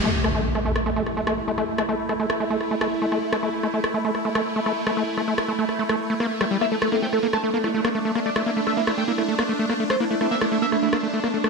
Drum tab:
SD |r-r--r-r--r-r--r|-r--r-r--r-r--r-|r--r-r--r-r--r-r|--r-r--r-r--r-r-|

SD |r-r--r-r--r-r--r|-r--r-r--r-r--r-|r--r-r--r-r--r-r|